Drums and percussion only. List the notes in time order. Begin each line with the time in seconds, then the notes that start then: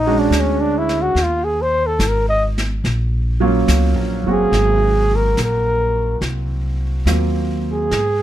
0.32 snare, hi-hat pedal
0.89 snare
1.16 brush sweep, snare
2.00 snare, hi-hat pedal
2.58 snare
2.85 brush sweep, snare
3.68 snare, hi-hat pedal
4.53 brush sweep, snare
5.37 snare, hi-hat pedal
6.22 brush sweep, snare
7.07 snare, hi-hat pedal
7.91 brush sweep, snare